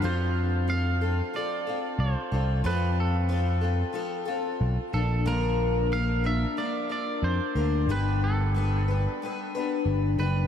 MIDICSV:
0, 0, Header, 1, 4, 480
1, 0, Start_track
1, 0, Tempo, 655738
1, 26, Time_signature, 4, 2, 24, 8
1, 7665, End_track
2, 0, Start_track
2, 0, Title_t, "Clean electric guitar"
2, 0, Program_c, 0, 27
2, 36, Note_on_c, 0, 72, 84
2, 510, Note_on_c, 0, 77, 97
2, 524, Note_off_c, 0, 72, 0
2, 993, Note_off_c, 0, 77, 0
2, 996, Note_on_c, 0, 74, 83
2, 1439, Note_off_c, 0, 74, 0
2, 1464, Note_on_c, 0, 72, 78
2, 1913, Note_off_c, 0, 72, 0
2, 1949, Note_on_c, 0, 71, 85
2, 2192, Note_off_c, 0, 71, 0
2, 2197, Note_on_c, 0, 69, 66
2, 2639, Note_off_c, 0, 69, 0
2, 3616, Note_on_c, 0, 69, 85
2, 3858, Note_off_c, 0, 69, 0
2, 3861, Note_on_c, 0, 70, 88
2, 4339, Note_on_c, 0, 77, 98
2, 4355, Note_off_c, 0, 70, 0
2, 4582, Note_off_c, 0, 77, 0
2, 4585, Note_on_c, 0, 76, 96
2, 4806, Note_off_c, 0, 76, 0
2, 4817, Note_on_c, 0, 74, 87
2, 5056, Note_off_c, 0, 74, 0
2, 5065, Note_on_c, 0, 74, 88
2, 5301, Note_on_c, 0, 72, 83
2, 5310, Note_off_c, 0, 74, 0
2, 5791, Note_off_c, 0, 72, 0
2, 5794, Note_on_c, 0, 71, 83
2, 6028, Note_off_c, 0, 71, 0
2, 6031, Note_on_c, 0, 69, 67
2, 6478, Note_off_c, 0, 69, 0
2, 7463, Note_on_c, 0, 71, 77
2, 7665, Note_off_c, 0, 71, 0
2, 7665, End_track
3, 0, Start_track
3, 0, Title_t, "Twelve-string acoustic guitar"
3, 0, Program_c, 1, 25
3, 15, Note_on_c, 1, 53, 72
3, 25, Note_on_c, 1, 65, 77
3, 27, Note_on_c, 1, 60, 77
3, 31, Note_on_c, 1, 69, 83
3, 492, Note_off_c, 1, 53, 0
3, 494, Note_on_c, 1, 53, 58
3, 495, Note_off_c, 1, 60, 0
3, 504, Note_on_c, 1, 60, 58
3, 507, Note_off_c, 1, 65, 0
3, 507, Note_off_c, 1, 69, 0
3, 510, Note_on_c, 1, 65, 59
3, 523, Note_on_c, 1, 69, 60
3, 733, Note_off_c, 1, 69, 0
3, 739, Note_off_c, 1, 53, 0
3, 742, Note_on_c, 1, 69, 47
3, 743, Note_off_c, 1, 60, 0
3, 747, Note_off_c, 1, 65, 0
3, 754, Note_on_c, 1, 65, 42
3, 764, Note_on_c, 1, 60, 38
3, 978, Note_off_c, 1, 60, 0
3, 978, Note_on_c, 1, 53, 53
3, 982, Note_off_c, 1, 69, 0
3, 986, Note_on_c, 1, 60, 52
3, 988, Note_off_c, 1, 65, 0
3, 997, Note_on_c, 1, 65, 53
3, 1002, Note_on_c, 1, 69, 59
3, 1212, Note_off_c, 1, 69, 0
3, 1220, Note_off_c, 1, 53, 0
3, 1220, Note_on_c, 1, 69, 51
3, 1224, Note_off_c, 1, 60, 0
3, 1225, Note_off_c, 1, 65, 0
3, 1234, Note_on_c, 1, 65, 46
3, 1241, Note_on_c, 1, 60, 41
3, 1687, Note_off_c, 1, 69, 0
3, 1696, Note_on_c, 1, 69, 51
3, 1706, Note_off_c, 1, 60, 0
3, 1707, Note_off_c, 1, 65, 0
3, 1710, Note_on_c, 1, 65, 44
3, 1715, Note_on_c, 1, 60, 40
3, 1928, Note_off_c, 1, 60, 0
3, 1930, Note_off_c, 1, 65, 0
3, 1932, Note_on_c, 1, 53, 72
3, 1937, Note_on_c, 1, 60, 78
3, 1938, Note_off_c, 1, 69, 0
3, 1939, Note_on_c, 1, 65, 80
3, 1947, Note_on_c, 1, 69, 86
3, 2401, Note_off_c, 1, 60, 0
3, 2403, Note_off_c, 1, 53, 0
3, 2406, Note_on_c, 1, 53, 60
3, 2410, Note_on_c, 1, 60, 64
3, 2418, Note_off_c, 1, 65, 0
3, 2420, Note_off_c, 1, 69, 0
3, 2421, Note_on_c, 1, 65, 61
3, 2429, Note_on_c, 1, 69, 65
3, 2635, Note_off_c, 1, 69, 0
3, 2643, Note_on_c, 1, 69, 45
3, 2646, Note_off_c, 1, 65, 0
3, 2653, Note_off_c, 1, 53, 0
3, 2655, Note_off_c, 1, 60, 0
3, 2655, Note_on_c, 1, 65, 44
3, 2666, Note_on_c, 1, 60, 42
3, 2873, Note_off_c, 1, 60, 0
3, 2874, Note_on_c, 1, 53, 53
3, 2882, Note_off_c, 1, 65, 0
3, 2882, Note_on_c, 1, 60, 59
3, 2885, Note_off_c, 1, 69, 0
3, 2890, Note_on_c, 1, 65, 64
3, 2893, Note_on_c, 1, 69, 66
3, 3105, Note_off_c, 1, 69, 0
3, 3114, Note_on_c, 1, 69, 59
3, 3121, Note_off_c, 1, 65, 0
3, 3127, Note_off_c, 1, 53, 0
3, 3129, Note_on_c, 1, 65, 58
3, 3131, Note_off_c, 1, 60, 0
3, 3139, Note_on_c, 1, 60, 50
3, 3607, Note_off_c, 1, 69, 0
3, 3608, Note_off_c, 1, 65, 0
3, 3610, Note_on_c, 1, 62, 48
3, 3619, Note_off_c, 1, 60, 0
3, 3621, Note_on_c, 1, 58, 42
3, 3626, Note_on_c, 1, 53, 43
3, 3847, Note_on_c, 1, 46, 82
3, 3849, Note_on_c, 1, 50, 76
3, 3850, Note_off_c, 1, 53, 0
3, 3852, Note_off_c, 1, 58, 0
3, 3853, Note_off_c, 1, 62, 0
3, 3859, Note_on_c, 1, 53, 71
3, 3860, Note_on_c, 1, 58, 83
3, 3862, Note_on_c, 1, 62, 82
3, 3865, Note_on_c, 1, 70, 85
3, 4323, Note_off_c, 1, 53, 0
3, 4332, Note_on_c, 1, 53, 56
3, 4334, Note_off_c, 1, 46, 0
3, 4334, Note_off_c, 1, 58, 0
3, 4335, Note_off_c, 1, 50, 0
3, 4342, Note_off_c, 1, 70, 0
3, 4342, Note_on_c, 1, 58, 65
3, 4346, Note_off_c, 1, 62, 0
3, 4349, Note_on_c, 1, 62, 59
3, 4354, Note_on_c, 1, 70, 61
3, 4558, Note_off_c, 1, 70, 0
3, 4567, Note_on_c, 1, 70, 52
3, 4568, Note_off_c, 1, 62, 0
3, 4573, Note_off_c, 1, 58, 0
3, 4576, Note_off_c, 1, 53, 0
3, 4577, Note_on_c, 1, 62, 44
3, 4581, Note_on_c, 1, 58, 41
3, 4588, Note_on_c, 1, 53, 40
3, 4800, Note_off_c, 1, 53, 0
3, 4806, Note_off_c, 1, 58, 0
3, 4808, Note_on_c, 1, 53, 52
3, 4810, Note_off_c, 1, 62, 0
3, 4814, Note_off_c, 1, 70, 0
3, 4815, Note_on_c, 1, 58, 58
3, 4819, Note_on_c, 1, 62, 61
3, 4829, Note_on_c, 1, 70, 60
3, 5038, Note_off_c, 1, 70, 0
3, 5047, Note_on_c, 1, 70, 54
3, 5051, Note_off_c, 1, 62, 0
3, 5055, Note_off_c, 1, 53, 0
3, 5056, Note_off_c, 1, 58, 0
3, 5060, Note_on_c, 1, 62, 47
3, 5065, Note_on_c, 1, 58, 45
3, 5074, Note_on_c, 1, 53, 42
3, 5522, Note_off_c, 1, 70, 0
3, 5530, Note_on_c, 1, 70, 51
3, 5532, Note_off_c, 1, 62, 0
3, 5536, Note_off_c, 1, 58, 0
3, 5541, Note_on_c, 1, 62, 43
3, 5544, Note_on_c, 1, 58, 41
3, 5548, Note_off_c, 1, 53, 0
3, 5556, Note_on_c, 1, 53, 38
3, 5775, Note_off_c, 1, 62, 0
3, 5776, Note_off_c, 1, 70, 0
3, 5776, Note_on_c, 1, 43, 72
3, 5780, Note_on_c, 1, 50, 72
3, 5782, Note_off_c, 1, 53, 0
3, 5783, Note_off_c, 1, 58, 0
3, 5784, Note_on_c, 1, 62, 79
3, 5785, Note_on_c, 1, 55, 76
3, 5786, Note_on_c, 1, 59, 70
3, 5794, Note_on_c, 1, 71, 84
3, 6246, Note_off_c, 1, 55, 0
3, 6255, Note_off_c, 1, 59, 0
3, 6255, Note_on_c, 1, 55, 55
3, 6259, Note_off_c, 1, 43, 0
3, 6260, Note_off_c, 1, 62, 0
3, 6262, Note_off_c, 1, 50, 0
3, 6264, Note_on_c, 1, 59, 60
3, 6269, Note_off_c, 1, 71, 0
3, 6269, Note_on_c, 1, 62, 62
3, 6278, Note_on_c, 1, 71, 63
3, 6491, Note_off_c, 1, 71, 0
3, 6499, Note_off_c, 1, 55, 0
3, 6500, Note_on_c, 1, 71, 47
3, 6503, Note_off_c, 1, 59, 0
3, 6506, Note_off_c, 1, 62, 0
3, 6516, Note_on_c, 1, 62, 45
3, 6520, Note_on_c, 1, 59, 46
3, 6529, Note_on_c, 1, 55, 36
3, 6740, Note_off_c, 1, 55, 0
3, 6742, Note_off_c, 1, 71, 0
3, 6748, Note_off_c, 1, 59, 0
3, 6749, Note_on_c, 1, 55, 55
3, 6750, Note_off_c, 1, 62, 0
3, 6757, Note_on_c, 1, 59, 65
3, 6769, Note_on_c, 1, 62, 65
3, 6775, Note_on_c, 1, 71, 61
3, 6981, Note_off_c, 1, 71, 0
3, 6987, Note_off_c, 1, 55, 0
3, 6989, Note_on_c, 1, 71, 64
3, 6990, Note_off_c, 1, 62, 0
3, 6991, Note_off_c, 1, 59, 0
3, 6999, Note_on_c, 1, 62, 55
3, 7007, Note_on_c, 1, 59, 54
3, 7017, Note_on_c, 1, 55, 47
3, 7448, Note_off_c, 1, 71, 0
3, 7457, Note_on_c, 1, 71, 53
3, 7460, Note_off_c, 1, 62, 0
3, 7466, Note_off_c, 1, 59, 0
3, 7468, Note_on_c, 1, 62, 48
3, 7472, Note_off_c, 1, 55, 0
3, 7474, Note_on_c, 1, 59, 39
3, 7480, Note_on_c, 1, 55, 41
3, 7665, Note_off_c, 1, 55, 0
3, 7665, Note_off_c, 1, 59, 0
3, 7665, Note_off_c, 1, 62, 0
3, 7665, Note_off_c, 1, 71, 0
3, 7665, End_track
4, 0, Start_track
4, 0, Title_t, "Picked electric bass"
4, 0, Program_c, 2, 34
4, 22, Note_on_c, 2, 41, 96
4, 879, Note_off_c, 2, 41, 0
4, 1453, Note_on_c, 2, 36, 94
4, 1564, Note_off_c, 2, 36, 0
4, 1697, Note_on_c, 2, 36, 73
4, 1913, Note_off_c, 2, 36, 0
4, 1935, Note_on_c, 2, 41, 99
4, 2794, Note_off_c, 2, 41, 0
4, 3371, Note_on_c, 2, 35, 92
4, 3482, Note_off_c, 2, 35, 0
4, 3612, Note_on_c, 2, 34, 83
4, 3830, Note_off_c, 2, 34, 0
4, 3849, Note_on_c, 2, 34, 111
4, 4712, Note_off_c, 2, 34, 0
4, 5288, Note_on_c, 2, 41, 101
4, 5401, Note_off_c, 2, 41, 0
4, 5528, Note_on_c, 2, 38, 82
4, 5748, Note_off_c, 2, 38, 0
4, 5760, Note_on_c, 2, 31, 98
4, 6629, Note_off_c, 2, 31, 0
4, 7213, Note_on_c, 2, 31, 74
4, 7435, Note_off_c, 2, 31, 0
4, 7453, Note_on_c, 2, 30, 70
4, 7665, Note_off_c, 2, 30, 0
4, 7665, End_track
0, 0, End_of_file